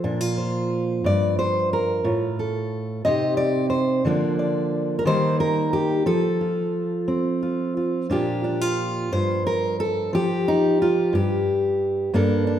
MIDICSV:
0, 0, Header, 1, 2, 480
1, 0, Start_track
1, 0, Key_signature, -2, "major"
1, 0, Tempo, 668896
1, 25, Time_signature, 6, 3, 24, 8
1, 3864, Tempo, 679502
1, 6744, Tempo, 668151
1, 8994, End_track
2, 0, Start_track
2, 0, Title_t, "Steel-string acoustic guitar"
2, 0, Program_c, 0, 25
2, 0, Note_on_c, 0, 53, 67
2, 27, Note_on_c, 0, 46, 67
2, 28, Note_on_c, 0, 62, 60
2, 148, Note_off_c, 0, 62, 0
2, 148, Note_on_c, 0, 65, 49
2, 271, Note_on_c, 0, 72, 48
2, 723, Note_off_c, 0, 46, 0
2, 723, Note_off_c, 0, 72, 0
2, 749, Note_on_c, 0, 43, 72
2, 751, Note_off_c, 0, 65, 0
2, 762, Note_on_c, 0, 74, 89
2, 993, Note_off_c, 0, 74, 0
2, 996, Note_on_c, 0, 72, 90
2, 1233, Note_off_c, 0, 72, 0
2, 1242, Note_on_c, 0, 70, 67
2, 1464, Note_off_c, 0, 43, 0
2, 1466, Note_on_c, 0, 45, 70
2, 1470, Note_on_c, 0, 65, 55
2, 1472, Note_off_c, 0, 53, 0
2, 1476, Note_off_c, 0, 70, 0
2, 1717, Note_on_c, 0, 69, 49
2, 2159, Note_off_c, 0, 45, 0
2, 2161, Note_off_c, 0, 65, 0
2, 2164, Note_off_c, 0, 69, 0
2, 2187, Note_on_c, 0, 75, 93
2, 2192, Note_on_c, 0, 48, 70
2, 2197, Note_on_c, 0, 60, 47
2, 2202, Note_on_c, 0, 63, 48
2, 2208, Note_on_c, 0, 67, 52
2, 2416, Note_off_c, 0, 75, 0
2, 2418, Note_on_c, 0, 74, 93
2, 2651, Note_off_c, 0, 74, 0
2, 2653, Note_on_c, 0, 72, 72
2, 2880, Note_off_c, 0, 60, 0
2, 2883, Note_off_c, 0, 63, 0
2, 2886, Note_off_c, 0, 67, 0
2, 2899, Note_off_c, 0, 72, 0
2, 2904, Note_on_c, 0, 50, 74
2, 2907, Note_off_c, 0, 48, 0
2, 2910, Note_on_c, 0, 53, 51
2, 2916, Note_on_c, 0, 58, 51
2, 2920, Note_on_c, 0, 62, 49
2, 2926, Note_on_c, 0, 74, 46
2, 3142, Note_off_c, 0, 74, 0
2, 3151, Note_on_c, 0, 74, 46
2, 3576, Note_off_c, 0, 62, 0
2, 3579, Note_on_c, 0, 70, 74
2, 3594, Note_off_c, 0, 50, 0
2, 3598, Note_off_c, 0, 74, 0
2, 3626, Note_off_c, 0, 53, 0
2, 3626, Note_off_c, 0, 70, 0
2, 3626, Note_on_c, 0, 51, 77
2, 3627, Note_off_c, 0, 58, 0
2, 3629, Note_on_c, 0, 55, 50
2, 3636, Note_on_c, 0, 58, 50
2, 3639, Note_on_c, 0, 72, 103
2, 3641, Note_on_c, 0, 63, 50
2, 3872, Note_off_c, 0, 72, 0
2, 3876, Note_on_c, 0, 70, 100
2, 4106, Note_off_c, 0, 70, 0
2, 4108, Note_on_c, 0, 67, 78
2, 4312, Note_off_c, 0, 51, 0
2, 4314, Note_off_c, 0, 55, 0
2, 4319, Note_off_c, 0, 63, 0
2, 4340, Note_on_c, 0, 53, 67
2, 4342, Note_off_c, 0, 67, 0
2, 4345, Note_on_c, 0, 69, 91
2, 4346, Note_off_c, 0, 58, 0
2, 4588, Note_on_c, 0, 65, 43
2, 5060, Note_on_c, 0, 60, 59
2, 5297, Note_off_c, 0, 65, 0
2, 5305, Note_on_c, 0, 65, 44
2, 5541, Note_off_c, 0, 65, 0
2, 5549, Note_on_c, 0, 65, 40
2, 5753, Note_off_c, 0, 60, 0
2, 5757, Note_off_c, 0, 65, 0
2, 5779, Note_on_c, 0, 46, 70
2, 5784, Note_off_c, 0, 69, 0
2, 5786, Note_on_c, 0, 62, 59
2, 5789, Note_on_c, 0, 65, 60
2, 5796, Note_on_c, 0, 67, 67
2, 6015, Note_off_c, 0, 62, 0
2, 6021, Note_off_c, 0, 65, 0
2, 6023, Note_on_c, 0, 62, 50
2, 6145, Note_off_c, 0, 62, 0
2, 6145, Note_on_c, 0, 65, 47
2, 6474, Note_off_c, 0, 46, 0
2, 6504, Note_off_c, 0, 67, 0
2, 6505, Note_off_c, 0, 65, 0
2, 6505, Note_on_c, 0, 43, 78
2, 6507, Note_on_c, 0, 72, 96
2, 6744, Note_off_c, 0, 72, 0
2, 6747, Note_on_c, 0, 70, 98
2, 6984, Note_off_c, 0, 70, 0
2, 6987, Note_on_c, 0, 69, 92
2, 7215, Note_off_c, 0, 53, 0
2, 7223, Note_on_c, 0, 53, 71
2, 7227, Note_off_c, 0, 43, 0
2, 7227, Note_off_c, 0, 69, 0
2, 7237, Note_on_c, 0, 67, 98
2, 7477, Note_on_c, 0, 63, 83
2, 7712, Note_off_c, 0, 63, 0
2, 7718, Note_on_c, 0, 65, 83
2, 7941, Note_on_c, 0, 43, 73
2, 7945, Note_off_c, 0, 53, 0
2, 7948, Note_off_c, 0, 67, 0
2, 7952, Note_off_c, 0, 65, 0
2, 7957, Note_on_c, 0, 67, 77
2, 8656, Note_off_c, 0, 43, 0
2, 8665, Note_on_c, 0, 43, 77
2, 8669, Note_on_c, 0, 58, 67
2, 8670, Note_off_c, 0, 67, 0
2, 8676, Note_on_c, 0, 62, 65
2, 8679, Note_on_c, 0, 69, 74
2, 8897, Note_off_c, 0, 62, 0
2, 8906, Note_on_c, 0, 62, 61
2, 8994, Note_off_c, 0, 43, 0
2, 8994, Note_off_c, 0, 58, 0
2, 8994, Note_off_c, 0, 62, 0
2, 8994, Note_off_c, 0, 69, 0
2, 8994, End_track
0, 0, End_of_file